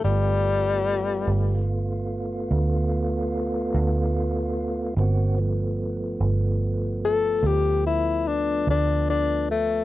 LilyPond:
<<
  \new Staff \with { instrumentName = "Tenor saxophone" } { \time 12/8 \key g \mixolydian \tempo 4. = 49 g2 r1 | r2 r8 a'8 g'8 e'8 d'8 d'8 d'8 a8 | }
  \new Staff \with { instrumentName = "Tonewheel organ" } { \time 12/8 \key g \mixolydian <a b f'>1. | <bes c' fis'>8 <f a b>1~ <f a b>4. | }
  \new Staff \with { instrumentName = "Fingered electric bass" } { \clef bass \time 12/8 \key g \mixolydian g,,4. g,,4. d,4. d,4. | g,,4. g,,4. d,4. d,4. | }
>>